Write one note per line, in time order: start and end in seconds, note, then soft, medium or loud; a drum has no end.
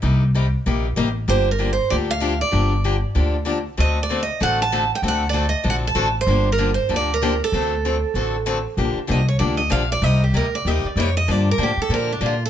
0.02 0.53 C2 medium
0.02 0.23 C3 medium
0.02 0.23 G3 medium
0.02 0.23 A#3 medium
0.02 0.23 D#4 medium
0.02 0.23 G4 medium
0.35 0.45 C3 medium
0.35 0.46 G3 medium
0.35 0.46 A#3 medium
0.35 0.46 D#4 medium
0.35 0.46 G4 medium
0.66 0.93 A#1 medium
0.66 0.86 C3 medium
0.66 0.86 G3 medium
0.66 0.86 A#3 medium
0.66 0.86 D#4 medium
0.66 0.87 G4 medium
0.96 1.24 A1 medium
0.96 1.08 C3 medium
0.96 1.07 G3 medium
0.96 1.08 A#3 loud
0.96 1.08 D#4 medium
0.96 1.08 G4 medium
1.28 1.78 G1 medium
1.28 1.48 D3 medium
1.28 1.48 F3 medium
1.28 1.48 A#3 medium
1.28 1.48 D4 medium
1.28 1.48 G4 medium
1.28 1.50 C5 medium
1.51 1.70 A#4 medium
1.58 1.70 D3 medium
1.58 1.70 F3 medium
1.58 1.70 A#3 medium
1.58 1.70 D4 medium
1.58 1.70 G4 medium
1.73 1.93 C5 medium
1.90 2.41 D2 medium
1.90 2.11 D3 medium
1.90 2.11 F3 medium
1.90 2.11 A#3 medium
1.90 2.11 D4 medium
1.90 2.11 G4 medium
1.90 1.95 D5 medium
2.11 2.41 F5 loud
2.20 2.32 D3 medium
2.20 2.33 F3 medium
2.20 2.32 A#3 medium
2.20 2.32 D4 medium
2.20 2.33 G4 medium
2.41 3.43 D5 medium
2.51 3.03 G1 medium
2.51 2.72 D3 medium
2.51 2.72 F3 medium
2.51 2.73 A#3 medium
2.51 2.73 D4 medium
2.51 2.73 G4 medium
2.84 2.95 D3 medium
2.84 2.95 F3 medium
2.84 2.95 A#3 medium
2.84 2.95 D4 medium
2.84 2.96 G4 medium
3.15 3.65 D2 medium
3.15 3.35 D3 medium
3.15 3.35 F3 medium
3.15 3.35 A#3 medium
3.15 3.36 D4 medium
3.15 3.36 G4 medium
3.45 3.57 D3 medium
3.45 3.57 F3 medium
3.45 3.57 A#3 medium
3.45 3.57 D4 medium
3.45 3.57 G4 medium
3.77 4.28 D2 medium
3.77 3.98 D3 medium
3.77 3.98 A3 medium
3.77 3.98 C4 medium
3.77 3.98 F#4 medium
3.77 3.98 A4 medium
3.77 4.01 D#5 medium
4.03 4.21 D5 medium
4.09 4.20 D3 medium
4.09 4.21 A3 medium
4.09 4.21 C4 medium
4.09 4.21 F#4 medium
4.09 4.21 A4 medium
4.23 4.41 D#5 medium
4.40 4.91 A1 medium
4.40 4.60 D3 medium
4.40 4.61 A3 medium
4.40 4.61 C4 medium
4.40 4.61 F#4 medium
4.40 4.61 A4 medium
4.40 4.61 F#5 medium
4.62 4.90 A5 medium
4.72 4.83 D3 medium
4.72 4.83 A3 medium
4.72 4.83 C4 medium
4.72 4.83 F#4 medium
4.72 4.83 A4 medium
4.95 5.00 G5 medium
5.02 5.53 D2 medium
5.02 5.23 D3 medium
5.02 5.23 A3 medium
5.02 5.23 C4 medium
5.02 5.23 F#4 medium
5.02 5.23 A4 medium
5.08 5.27 F#5 medium
5.29 5.45 D3 medium
5.29 5.45 A3 medium
5.29 5.48 D5 medium
5.34 5.45 C4 medium
5.34 5.45 F#4 medium
5.34 5.45 A4 medium
5.49 5.66 D#5 medium
5.64 5.92 A#1 medium
5.64 5.85 D3 medium
5.64 5.85 A3 medium
5.64 5.85 C4 medium
5.64 5.85 F#4 medium
5.64 5.85 A4 medium
5.70 5.75 F#5 medium
5.87 6.15 A5 medium
5.95 6.22 A1 medium
5.95 6.07 D3 medium
5.95 6.07 A3 medium
5.95 6.07 C4 medium
5.95 6.07 F#4 medium
5.95 6.07 A4 loud
6.21 6.52 C5 medium
6.27 6.77 G1 medium
6.27 6.48 D3 medium
6.27 6.48 F3 medium
6.27 6.48 A#3 medium
6.27 6.48 D4 medium
6.27 6.48 G4 medium
6.52 6.70 A#4 medium
6.58 6.70 D3 medium
6.58 6.70 F3 medium
6.58 6.70 A#3 medium
6.58 6.70 D4 medium
6.58 6.70 G4 medium
6.74 6.92 C5 medium
6.89 7.40 D2 medium
6.89 7.10 D3 medium
6.89 7.10 F3 medium
6.89 7.10 A#3 medium
6.89 7.10 D4 medium
6.89 7.10 G4 medium
6.96 7.13 D5 medium
7.14 7.44 A#4 medium
7.22 7.33 D3 medium
7.22 7.33 F3 medium
7.22 7.33 A#3 medium
7.22 7.33 D4 medium
7.22 7.33 G4 medium
7.44 8.45 A4 medium
7.52 8.03 D2 medium
7.52 7.73 D3 medium
7.52 7.73 A3 medium
7.52 7.73 C4 medium
7.52 7.73 F#4 medium
7.52 7.74 A4 medium
7.85 7.96 D3 medium
7.85 7.96 A3 medium
7.85 7.96 C4 medium
7.85 7.96 F#4 medium
7.85 7.96 A4 medium
8.14 8.65 A1 medium
8.14 8.35 D3 medium
8.14 8.35 A3 medium
8.14 8.35 C4 medium
8.14 8.35 F#4 medium
8.14 8.36 A4 medium
8.46 8.57 D3 medium
8.46 8.57 A3 medium
8.46 8.57 C4 medium
8.46 8.58 F#4 medium
8.46 8.58 A4 medium
8.77 8.95 A#1 medium
8.77 8.98 D3 medium
8.77 8.98 F3 medium
8.77 8.98 A#3 medium
8.77 8.98 D4 medium
8.77 8.98 G4 medium
8.96 muted upright bass stroke soft
9.07 9.40 C2 medium
9.07 9.19 D3 medium
9.07 9.20 F3 medium
9.07 9.20 A#3 medium
9.07 9.20 D4 medium
9.07 9.20 G4 medium
9.11 9.28 D#5 medium
9.28 9.39 C#5 medium
9.39 9.70 D2 medium
9.39 9.60 D3 medium
9.39 9.60 F3 medium
9.39 9.60 A#3 medium
9.39 9.60 D4 medium
9.39 9.60 G4 medium
9.39 9.57 D5 medium
9.57 9.71 D#5 medium
9.70 10.01 A#1 medium
9.70 9.82 D3 medium
9.70 9.82 F3 medium
9.70 9.82 A#3 medium
9.70 9.82 D4 medium
9.70 9.82 G4 loud
9.70 9.90 F5 medium
9.92 10.04 D5 medium
10.02 10.32 C2 medium
10.02 10.23 C3 medium
10.02 10.23 G3 medium
10.02 10.23 A#3 medium
10.02 10.23 D#4 medium
10.02 10.23 G4 medium
10.02 10.22 D#5 medium
10.24 10.35 G4 soft
10.33 10.64 D2 medium
10.33 10.45 C3 medium
10.33 10.45 G3 medium
10.33 10.45 A#3 medium
10.33 10.46 D#4 medium
10.33 10.45 G4 medium
10.33 10.54 A#4 medium
10.55 10.68 D5 medium
10.65 10.83 D#2 medium
10.65 10.86 C3 medium
10.65 10.86 G3 medium
10.65 10.87 A#3 medium
10.65 10.87 D#4 medium
10.65 10.87 G4 medium
10.65 10.87 D#5 medium
10.84 10.98 D5 medium
10.84 muted upright bass stroke soft
10.96 11.27 F2 medium
10.96 11.08 C3 medium
10.96 11.08 G3 medium
10.96 11.08 A#3 medium
10.96 11.08 D#4 medium
10.96 11.09 G4 medium
11.00 11.17 C#5 medium
11.17 11.31 D#5 medium
11.28 11.57 G2 medium
11.28 11.48 D3 medium
11.28 11.48 F3 medium
11.28 11.49 A#3 medium
11.28 11.48 D4 medium
11.28 11.49 G4 medium
11.28 11.48 D5 medium
11.51 11.62 A#4 medium
11.58 11.76 A2 medium
11.58 11.70 D3 medium
11.58 11.70 F3 medium
11.58 11.70 A#3 medium
11.58 11.70 D4 medium
11.58 11.70 G4 medium
11.63 11.80 G4 medium
11.77 muted upright bass stroke soft
11.82 11.93 A4 medium
11.89 12.20 A#2 medium
11.89 12.11 D3 medium
11.89 12.11 F3 medium
11.89 12.11 A#3 medium
11.89 12.11 D4 medium
11.89 12.11 G4 medium
11.94 12.11 A#4 medium
12.13 12.24 D4 medium
12.21 12.50 A#2 medium
12.21 12.33 D3 medium
12.21 12.33 F3 medium
12.21 12.33 A#3 medium
12.21 12.33 D4 medium
12.21 12.33 G4 medium
12.26 12.43 F4 medium
12.46 12.50 A4 medium